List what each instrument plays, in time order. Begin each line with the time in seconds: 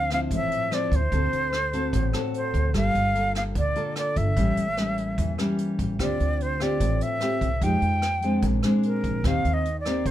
Already playing: upright bass D2, nylon-string guitar D3, flute F5
0.10 nylon-string guitar F3 C4 E4, flute F5, cross-stick, closed hi-hat
0.31 upright bass A1, nylon-string guitar A2, kick, closed hi-hat
0.35 flute E5
0.52 closed hi-hat
0.71 nylon-string guitar F3 C4 E4, flute D5, cross-stick, closed hi-hat
0.91 upright bass D2, kick, closed hi-hat
0.95 flute C5
1.12 upright bass D2, nylon-string guitar D3 C4 F#4 A4, kick, closed hi-hat
1.33 upright bass D2, closed hi-hat
1.53 cross-stick, closed hi-hat
1.73 nylon-string guitar C4 F#4 A4, closed hi-hat
1.93 upright bass A1, nylon-string guitar A2, kick, closed hi-hat
2.13 nylon-string guitar C4 F#4 A4, cross-stick, closed hi-hat
2.34 flute C5, closed hi-hat
2.54 upright bass D2, kick, closed hi-hat
2.74 upright bass G1, nylon-string guitar G3 A#3 F4 A4, flute F5, kick, cross-stick, closed hi-hat
2.95 upright bass G1, closed hi-hat
3.14 nylon-string guitar A#3 F4 A4, closed hi-hat
3.35 flute F5, cross-stick, closed hi-hat
3.55 upright bass D2, nylon-string guitar D3, flute D5, kick, closed hi-hat
3.75 nylon-string guitar A#3 F4 A4, closed hi-hat
3.96 flute D5, cross-stick, closed hi-hat
4.16 upright bass G1, flute E5, kick, closed hi-hat
4.37 upright bass A1, nylon-string guitar A2 G3 A#3 C#4, kick, closed hi-hat
4.57 upright bass A1, closed hi-hat
4.77 nylon-string guitar G3 A#3 C#4, cross-stick, closed hi-hat
4.98 closed hi-hat
5.18 upright bass E2, nylon-string guitar E3, kick, closed hi-hat
5.38 nylon-string guitar G3 A#3 C#4, cross-stick, closed hi-hat
5.58 closed hi-hat
5.79 upright bass A1, kick, closed hi-hat
5.99 upright bass D2, nylon-string guitar D3 C4 F4 G4, flute D5, kick, cross-stick, closed hi-hat
6.20 upright bass D2, closed hi-hat
6.40 flute C5, closed hi-hat
6.60 nylon-string guitar C4 F4 G4, flute D5, cross-stick, closed hi-hat
6.80 upright bass A1, nylon-string guitar A2, kick, closed hi-hat
7.01 flute E5, closed hi-hat
7.20 nylon-string guitar C4 F4 G4, cross-stick, closed hi-hat
7.41 upright bass C2, kick, closed hi-hat
7.61 upright bass F2, nylon-string guitar F3 G#3 D#4 G4, flute G5, kick, closed hi-hat
7.82 upright bass F2, closed hi-hat
8.02 cross-stick, closed hi-hat
8.22 nylon-string guitar G#3 C4 D4, closed hi-hat
8.42 upright bass A#1, nylon-string guitar A#2, kick, closed hi-hat
8.63 nylon-string guitar G#3 C4 D4, cross-stick, closed hi-hat
8.83 flute A#4, closed hi-hat
9.04 upright bass A#1, kick, closed hi-hat
9.24 upright bass D#2, nylon-string guitar D#3 A#3 C4 G4, flute F5, kick, cross-stick, closed hi-hat
9.45 upright bass D#2, closed hi-hat
9.54 flute D#5
9.65 closed hi-hat
9.80 flute D5
9.85 nylon-string guitar A#3 C4 G4, cross-stick, closed hi-hat
10.06 upright bass A#1, nylon-string guitar A#2, flute C5, kick, closed hi-hat